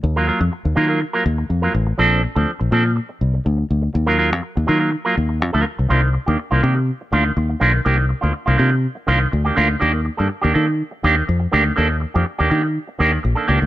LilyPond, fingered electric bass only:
\new Staff \with { instrumentName = "Fingered electric bass" } { \clef bass \time 4/4 \key c \dorian \tempo 4 = 123 ees,8. f,16 r16 ees,16 ees8. r16 ees,8 f,8 a,,8 | bes,,8. d,16 r16 bes,,16 bes,8. r16 c,8 d,8 d,8 | ees,8. f,16 r16 ees,16 ees8. r16 ees,8 f,16 d,16 r16 c,16 | c,8. ees,16 r16 c,16 c8. r16 d,8 ees,8 ces,8 |
c,8. d,16 r16 c,16 c8. r16 c,8 d,8 d,8 | ees,8. g,16 r16 ees,16 ees8. r16 ees,8 f,8 d,8 | ees,8. f,16 r16 ees,16 ees8. r16 ees,8 bes,,16 r16 des,16 d,16 | }